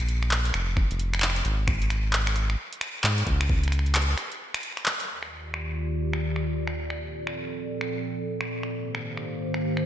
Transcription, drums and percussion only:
0.09 closed hi-hat medium
0.23 finger snap medium
0.31 clap loud
0.45 closed hi-hat soft
0.54 finger snap medium
0.54 closed hi-hat medium
0.77 finger snap medium
0.77 kick loud
0.91 closed hi-hat soft
0.99 closed hi-hat medium
1.14 finger snap medium
1.19 finger snap soft
1.22 finger snap soft
1.22 clap loud
1.27 finger snap soft
1.30 finger snap soft
1.36 closed hi-hat soft
1.45 closed hi-hat medium
1.68 finger snap medium
1.68 kick loud
1.82 closed hi-hat soft
1.90 finger snap medium
1.90 closed hi-hat medium
2.13 clap loud
2.27 finger snap medium
2.27 closed hi-hat soft
2.36 closed hi-hat medium
2.50 finger snap medium
2.73 closed hi-hat medium
2.81 finger snap medium
2.81 closed hi-hat medium
3.04 finger snap medium
3.04 clap loud
3.18 closed hi-hat soft
3.27 kick medium
3.27 closed hi-hat medium
3.41 finger snap medium
3.49 kick loud
3.63 closed hi-hat medium
3.68 finger snap soft
3.72 finger snap soft
3.72 closed hi-hat medium
3.79 finger snap soft
3.86 closed hi-hat soft
3.95 finger snap medium
3.95 clap loud
4.02 closed hi-hat medium
4.18 finger snap medium
4.18 closed hi-hat medium
4.32 closed hi-hat soft
4.54 finger snap medium
4.54 closed hi-hat medium
4.63 closed hi-hat medium
4.77 finger snap medium
4.77 closed hi-hat soft
4.86 clap loud
5.00 closed hi-hat medium
5.23 finger snap medium
5.54 finger snap medium
6.13 finger snap medium
6.36 finger snap soft
6.67 finger snap medium
6.90 finger snap soft
7.27 finger snap medium
7.81 finger snap medium
8.41 finger snap medium
8.63 finger snap soft
8.95 finger snap medium
9.17 finger snap soft
9.54 finger snap medium
9.77 finger snap soft

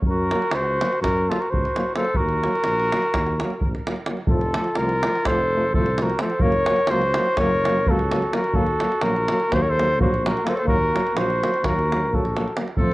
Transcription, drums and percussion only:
0.02 davul low medium
0.31 davul high medium
0.42 davul high soft
0.51 davul high medium
0.81 davul high medium
0.92 davul high soft
1.04 davul high medium
1.04 davul low medium
1.31 davul high medium
1.42 davul high soft
1.53 davul low medium
1.65 davul high soft
1.76 davul high medium
1.95 davul high medium
2.05 davul high soft
2.14 davul low medium
2.29 davul high soft
2.43 davul high medium
2.55 davul high soft
2.64 davul high medium
2.79 davul high soft
2.92 davul high medium
3.02 davul high soft
3.14 davul high medium
3.14 davul low medium
3.26 davul high soft
3.40 davul high medium
3.50 davul high soft
3.61 davul low medium
3.75 davul high soft
3.87 davul high medium
3.96 davul high soft
4.06 davul high medium
4.17 davul high soft
4.27 davul low loud
4.41 davul high soft
4.54 davul high medium
4.64 davul high soft
4.75 davul high medium
4.89 davul high soft
5.03 davul high medium
5.16 davul high soft
5.25 davul high medium
5.25 davul low medium
5.74 davul low medium
5.86 davul high soft
5.98 davul high medium
6.10 davul high soft
6.19 davul high medium
6.30 davul high soft
6.40 davul low medium
6.52 davul high soft
6.66 davul high medium
6.76 davul high soft
6.87 davul high medium
7.02 davul high soft
7.14 davul high medium
7.26 davul high soft
7.37 davul high medium
7.37 davul low medium
7.65 davul high medium
7.86 davul low medium
7.99 davul high soft
8.11 davul high medium
8.22 davul high soft
8.33 davul high medium
8.44 davul high soft
8.53 davul low medium
8.66 davul high soft
8.80 davul high medium
8.92 davul high soft
9.01 davul high medium
9.16 davul high soft
9.28 davul high medium
9.40 davul high soft
9.52 davul high medium
9.52 davul low medium
9.79 davul high medium
10.00 davul low medium
10.14 davul high soft
10.26 davul high medium
10.37 davul high soft
10.47 davul high medium
10.57 davul high soft
10.67 davul low medium
10.96 davul high medium
11.07 davul high soft
11.17 davul high medium
11.30 davul high soft
11.43 davul high medium
11.54 davul high soft
11.64 davul high medium
11.64 davul low medium
11.79 davul high soft
11.92 davul high medium
12.13 davul low medium
12.25 davul high soft
12.36 davul high medium
12.48 davul high soft
12.57 davul high medium
12.68 davul high soft
12.77 davul low medium

